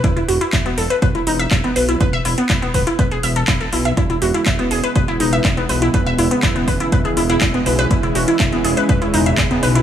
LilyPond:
<<
  \new Staff \with { instrumentName = "Synth arpeggio sound" } { \time 4/4 \key cis \minor \tempo 4 = 122 e'16 e'16 fis'16 e'16 e''16 b16 a'16 b'16 b'16 e'16 dis'16 e''16 e''16 b16 b'16 e'16 | b'16 e''16 e'16 b16 e'16 b16 b'16 e'16 b'16 gis'16 e''16 a'16 e'16 a'16 e'16 e''16 | e'16 e'16 fis'16 e'16 e''16 b16 gis'16 b'16 b'16 e'16 dis'16 e''16 e''16 b16 b'16 e'16 | b'16 e''16 e'16 b16 e'16 b16 b'16 e'16 b'16 gis'16 e'16 e'16 e'16 b16 b'16 b'16 |
e'16 e'16 fis'16 e'16 e''16 b16 gis'16 b'16 b'16 e'16 dis'16 e''16 e''16 b16 b'16 e'16 | }
  \new Staff \with { instrumentName = "Analog synth pad" } { \time 4/4 \key cis \minor << { r1 | r1 | <cis e gis e'>1~ | <cis e gis e'>1~ |
<cis e gis e'>1 | } \\ { r1 | r1 | b1~ | b1 |
cis'1 | } >> }
  \new Staff \with { instrumentName = "Analog synth bass" } { \clef bass \time 4/4 \key cis \minor e,,8 e,,8 e,,8 e,,8 e,,8 e,,8 e,,8 b,,8 | e,,8 e,,8 e,,8 e,,8 e,,8 e,,8 e,,8 b,,8 | e,,8 e,,8 e,,8 e,,8 e,,8 e,,8 e,,8 b,,8 | e,,8 e,,8 e,,8 e,,8 e,,8 e,,8 e,,8 b,,8 |
e,,8 e,,8 e,,8 e,,8 e,,8 e,,8 e,,8 b,,8 | }
  \new DrumStaff \with { instrumentName = "Drums" } \drummode { \time 4/4 <hh bd>16 hh16 hho16 hh16 <hc hh bd>16 hh16 hho16 hh16 <hh bd>16 hh16 hho16 hh16 <hc hh bd>16 hh16 hho16 hh16 | <hh bd>16 hh16 hho16 hh16 <hc hh bd>16 hh16 <hho bd>16 hh16 <hh bd>16 hh16 hho16 hh16 <hc hh bd>16 hh16 hho16 hh16 | <hh bd>16 hh16 hho16 hh16 <hc hh bd>16 hh16 hho16 hh16 <hh bd>16 hh16 hho16 hh16 <hc hh bd>16 hh16 hho16 hh16 | <hh bd>16 hh16 hho16 hh16 <hc hh bd>16 hh16 <hho bd>16 hh16 <hh bd>16 hh16 hho16 hh16 <hc hh bd>16 hh16 hho16 hh16 |
<hh bd>16 hh16 hho16 hh16 <hc hh bd>16 hh16 hho16 hh16 <hh bd>16 hh16 hho16 hh16 <hc hh bd>16 hh16 hho16 hh16 | }
>>